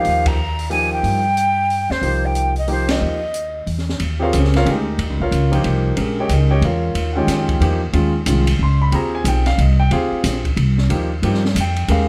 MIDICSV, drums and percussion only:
0, 0, Header, 1, 2, 480
1, 0, Start_track
1, 0, Tempo, 328587
1, 76, Time_signature, 3, 2, 24, 8
1, 17654, End_track
2, 0, Start_track
2, 0, Title_t, "Drums"
2, 68, Note_on_c, 9, 46, 39
2, 214, Note_off_c, 9, 46, 0
2, 376, Note_on_c, 9, 51, 67
2, 378, Note_on_c, 9, 36, 74
2, 522, Note_off_c, 9, 51, 0
2, 524, Note_off_c, 9, 36, 0
2, 858, Note_on_c, 9, 46, 35
2, 1004, Note_off_c, 9, 46, 0
2, 1034, Note_on_c, 9, 46, 36
2, 1180, Note_off_c, 9, 46, 0
2, 1518, Note_on_c, 9, 46, 40
2, 1664, Note_off_c, 9, 46, 0
2, 1999, Note_on_c, 9, 42, 42
2, 2145, Note_off_c, 9, 42, 0
2, 2484, Note_on_c, 9, 46, 38
2, 2630, Note_off_c, 9, 46, 0
2, 2789, Note_on_c, 9, 38, 36
2, 2935, Note_off_c, 9, 38, 0
2, 2960, Note_on_c, 9, 46, 40
2, 3106, Note_off_c, 9, 46, 0
2, 3433, Note_on_c, 9, 42, 45
2, 3579, Note_off_c, 9, 42, 0
2, 3735, Note_on_c, 9, 46, 31
2, 3881, Note_off_c, 9, 46, 0
2, 3909, Note_on_c, 9, 46, 38
2, 4055, Note_off_c, 9, 46, 0
2, 4215, Note_on_c, 9, 51, 64
2, 4217, Note_on_c, 9, 38, 68
2, 4361, Note_off_c, 9, 51, 0
2, 4363, Note_off_c, 9, 38, 0
2, 4876, Note_on_c, 9, 42, 49
2, 5022, Note_off_c, 9, 42, 0
2, 5361, Note_on_c, 9, 46, 38
2, 5507, Note_off_c, 9, 46, 0
2, 5525, Note_on_c, 9, 38, 25
2, 5671, Note_off_c, 9, 38, 0
2, 5686, Note_on_c, 9, 38, 39
2, 5832, Note_off_c, 9, 38, 0
2, 5837, Note_on_c, 9, 51, 58
2, 5983, Note_off_c, 9, 51, 0
2, 6325, Note_on_c, 9, 44, 50
2, 6325, Note_on_c, 9, 51, 59
2, 6471, Note_off_c, 9, 44, 0
2, 6471, Note_off_c, 9, 51, 0
2, 6491, Note_on_c, 9, 38, 27
2, 6626, Note_on_c, 9, 51, 39
2, 6637, Note_off_c, 9, 38, 0
2, 6647, Note_on_c, 9, 38, 41
2, 6772, Note_off_c, 9, 51, 0
2, 6793, Note_off_c, 9, 38, 0
2, 6812, Note_on_c, 9, 51, 52
2, 6958, Note_off_c, 9, 51, 0
2, 7286, Note_on_c, 9, 51, 59
2, 7433, Note_off_c, 9, 51, 0
2, 7586, Note_on_c, 9, 36, 40
2, 7732, Note_off_c, 9, 36, 0
2, 7774, Note_on_c, 9, 44, 48
2, 7774, Note_on_c, 9, 51, 50
2, 7920, Note_off_c, 9, 44, 0
2, 7920, Note_off_c, 9, 51, 0
2, 8072, Note_on_c, 9, 51, 45
2, 8218, Note_off_c, 9, 51, 0
2, 8241, Note_on_c, 9, 51, 51
2, 8387, Note_off_c, 9, 51, 0
2, 8716, Note_on_c, 9, 51, 59
2, 8863, Note_off_c, 9, 51, 0
2, 9193, Note_on_c, 9, 44, 47
2, 9193, Note_on_c, 9, 51, 59
2, 9339, Note_off_c, 9, 44, 0
2, 9339, Note_off_c, 9, 51, 0
2, 9674, Note_on_c, 9, 51, 51
2, 9820, Note_off_c, 9, 51, 0
2, 10154, Note_on_c, 9, 51, 60
2, 10300, Note_off_c, 9, 51, 0
2, 10635, Note_on_c, 9, 44, 51
2, 10635, Note_on_c, 9, 51, 64
2, 10637, Note_on_c, 9, 38, 37
2, 10781, Note_off_c, 9, 44, 0
2, 10781, Note_off_c, 9, 51, 0
2, 10783, Note_off_c, 9, 38, 0
2, 10936, Note_on_c, 9, 36, 51
2, 10938, Note_on_c, 9, 51, 42
2, 11083, Note_off_c, 9, 36, 0
2, 11084, Note_off_c, 9, 51, 0
2, 11124, Note_on_c, 9, 51, 52
2, 11270, Note_off_c, 9, 51, 0
2, 11590, Note_on_c, 9, 51, 57
2, 11736, Note_off_c, 9, 51, 0
2, 12067, Note_on_c, 9, 44, 62
2, 12067, Note_on_c, 9, 51, 66
2, 12213, Note_off_c, 9, 44, 0
2, 12213, Note_off_c, 9, 51, 0
2, 12375, Note_on_c, 9, 51, 68
2, 12521, Note_off_c, 9, 51, 0
2, 13033, Note_on_c, 9, 51, 60
2, 13179, Note_off_c, 9, 51, 0
2, 13514, Note_on_c, 9, 44, 59
2, 13514, Note_on_c, 9, 51, 64
2, 13660, Note_off_c, 9, 44, 0
2, 13660, Note_off_c, 9, 51, 0
2, 13818, Note_on_c, 9, 51, 43
2, 13819, Note_on_c, 9, 38, 33
2, 13964, Note_off_c, 9, 51, 0
2, 13966, Note_off_c, 9, 38, 0
2, 14002, Note_on_c, 9, 51, 56
2, 14148, Note_off_c, 9, 51, 0
2, 14476, Note_on_c, 9, 51, 54
2, 14622, Note_off_c, 9, 51, 0
2, 14955, Note_on_c, 9, 44, 53
2, 14955, Note_on_c, 9, 51, 71
2, 14957, Note_on_c, 9, 38, 37
2, 15101, Note_off_c, 9, 44, 0
2, 15101, Note_off_c, 9, 51, 0
2, 15103, Note_off_c, 9, 38, 0
2, 15261, Note_on_c, 9, 36, 52
2, 15265, Note_on_c, 9, 51, 41
2, 15407, Note_off_c, 9, 36, 0
2, 15411, Note_off_c, 9, 51, 0
2, 15442, Note_on_c, 9, 51, 57
2, 15588, Note_off_c, 9, 51, 0
2, 15746, Note_on_c, 9, 38, 35
2, 15892, Note_off_c, 9, 38, 0
2, 15923, Note_on_c, 9, 51, 59
2, 16069, Note_off_c, 9, 51, 0
2, 16405, Note_on_c, 9, 51, 57
2, 16551, Note_off_c, 9, 51, 0
2, 16567, Note_on_c, 9, 38, 28
2, 16713, Note_off_c, 9, 38, 0
2, 16730, Note_on_c, 9, 38, 44
2, 16876, Note_off_c, 9, 38, 0
2, 16885, Note_on_c, 9, 44, 52
2, 16885, Note_on_c, 9, 51, 68
2, 17031, Note_off_c, 9, 44, 0
2, 17031, Note_off_c, 9, 51, 0
2, 17185, Note_on_c, 9, 51, 45
2, 17331, Note_off_c, 9, 51, 0
2, 17359, Note_on_c, 9, 51, 60
2, 17506, Note_off_c, 9, 51, 0
2, 17654, End_track
0, 0, End_of_file